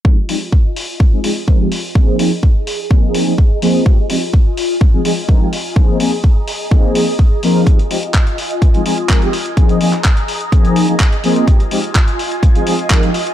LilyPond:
<<
  \new Staff \with { instrumentName = "String machine" } { \time 4/4 \key f \minor \tempo 4 = 126 << { <f' aes''>1 | <aes' bes''>1 | <f' aes''>1 | <aes' bes''>1 |
<f' aes''>1 | <aes' bes''>1 | <f' aes''>1 | } \\ { ees''1 | ees''1~ | ees''1 | ees''1 |
ees''1 | ees''1 | ees''1 | } >> }
  \new Staff \with { instrumentName = "Analog polysynth" } { \time 4/4 \key f \minor <f aes c' ees' g'>16 r16 <f aes c' ees' g'>16 r4. <f aes c' ees' aes'>16 <f aes c' ees' aes'>16 r16 <f aes c' ees' bes'>16 <f aes c' ees' g'>16 r8 | <f bes c' ees' aes'>8 <f bes c' ees' aes'>16 r4 r16 <f bes c' ees' aes'>8. <f bes c' ees' aes'>16 r8 <f bes c' ees' aes'>8 | <f aes c' ees' g'>16 r16 <f aes c' ees' g'>16 r4. <f aes c' ees' aes'>16 <f aes c' ees' aes'>16 r16 <f aes c' ees' bes'>16 <f aes c' ees' g'>16 r8 | <f bes c' ees' aes'>8 <f bes c' ees' aes'>16 r4 r16 <f bes c' ees' aes'>8. r8. <f bes c' ees' bes'>8 |
<f aes c' ees' g'>16 r16 <f aes c' ees' g'>16 r4. <f aes c' ees' aes'>16 <f aes c' ees' aes'>16 r16 <f aes c' ees' bes'>16 <f aes c' ees' g'>16 r8 | <f bes c' ees' aes'>8 <f bes c' ees' aes'>16 r4 r16 <f bes c' ees' aes'>8. <f bes c' ees' aes'>16 r8 <f bes c' ees' aes'>8 | <f aes c' ees' g'>16 r16 <f aes c' ees' g'>16 r4. <f aes c' ees' aes'>16 <f aes c' ees' aes'>16 r16 <f aes c' ees' bes'>16 <f aes c' ees' g'>16 r8 | }
  \new DrumStaff \with { instrumentName = "Drums" } \drummode { \time 4/4 bd8 hho8 bd8 hho8 bd8 hho8 bd8 hho8 | bd8 hho8 bd8 hho8 bd8 hho8 bd8 hho8 | bd8 hho8 bd8 hho8 bd8 hho8 bd8 hho8 | bd8 hho8 bd8 hho8 bd8 hho8 bd8 hho8 |
<hh bd>16 hh16 hho16 hh16 <hc hh bd>16 hh16 hho16 hh16 <hh bd>16 hh16 hho16 hh16 <hc hh bd>16 hh16 hho16 hh16 | <hh bd>16 hh16 hho16 <hc hh>16 <hc hh bd>16 hh16 hho16 hh16 <hh bd>16 hh16 hho16 hh16 <hc hh bd>16 hh16 hho16 hh16 | <hh bd>16 hh16 hho16 hh16 <hc hh bd>16 hh16 hho16 hh16 <hh bd>16 hh16 hho16 hh16 <hc hh bd>16 hh16 hho16 hh16 | }
>>